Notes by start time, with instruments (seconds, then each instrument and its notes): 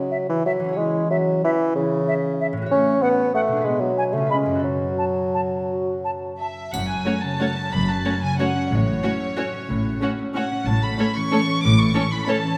Already playing: harp C#3 E4 G#4 C#5, bassoon F#3
0.11 flute E5
0.29 bassoon E3
0.45 bassoon F#3, flute E5
0.60 harp E3
0.64 harp C#4
0.69 harp G#4
0.73 harp C#5
0.77 bassoon G#3, clarinet E4
1.10 bassoon F#3, flute E5
1.44 bassoon E3, flute E5
1.76 bassoon C#3, clarinet E4
2.08 flute E5
2.41 flute E5
2.53 harp A2
2.57 harp C#4
2.62 harp F#4
2.66 harp C#5
2.71 clarinet A3, bassoon C#4
3.02 bassoon B3, flute F#5
3.34 bassoon A3, flute F#5
3.48 harp B2
3.52 harp D4
3.57 harp G#4
3.61 bassoon G#3, harp B4
3.66 clarinet B3
3.81 bassoon F#3
3.98 flute G#5
4.13 harp C#3, bassoon A3
4.17 harp C#4
4.22 harp F4
4.26 harp B4, flute B5
4.31 bassoon G#3, clarinet C#4
4.46 harp F#2
4.50 harp C#4
4.55 harp F#4
4.59 harp A4
4.64 bassoon F#3, clarinet F#4
4.98 flute A5
5.34 flute A5
5.69 clarinet F#4
6.04 flute A5
6.39 violin section E5, flute A5
6.72 double bass section F#1, cello section F#2, harp F#2, violin section F#5, triangle
6.88 harp F#4, violin section G#5
7.05 viola section A3 C#4, harp C#4, violin section F#4 C#5
7.23 harp C#3, violin section A5
7.40 viola section A3 C#4, harp F#4, violin section F#4 C#5
7.56 harp C#4
7.72 double bass section F#1, harp F#2, cello section F#2, violin section B5
7.88 harp F#4, violin section A5
8.05 viola section A3 C#4, harp C#4, violin section F#4 C#5
8.22 harp C#3, violin section G#5
8.39 viola section A3 C#4, harp F#4, violin section F#4 C#5 F#5
8.56 harp C#4
8.71 double bass section A1, harp A2, cello section A2, violin section C#5
8.87 harp F#4
9.03 viola section A3 C#4, harp C#4, violin section F#4 C#5
9.20 harp A3
9.36 viola section A3 C#4, harp F#4, violin section F#4 C#5
9.53 harp C#4
9.69 double bass section A1, harp A2, cello section A2
9.85 harp F#4
10.01 viola section A3 C#4, harp C#4, violin section F#4 C#5
10.19 harp A3
10.35 viola section A3 C#4, harp F#4, violin section F#4 C#5 F#5
10.52 harp C#4
10.66 double bass section A1, harp A2, cello section A2, violin section A5
10.82 harp A4, violin section B5
10.99 viola section A3 C#4, harp C#4, violin section A4 C#5
11.15 harp E3, violin section C#6
11.31 viola section A3 C#4, violin section A4 C#5, harp A4
11.48 harp C#4
11.63 double bass section A1, cello section A2, harp A2, violin section D6
11.79 harp A4, violin section C#6
11.94 viola section A3 C#4, harp C#4, violin section A4 C#5
12.11 harp E3, violin section B5
12.27 viola section A3 C#4, harp A4, violin section A4 C#5 A5
12.44 harp C#4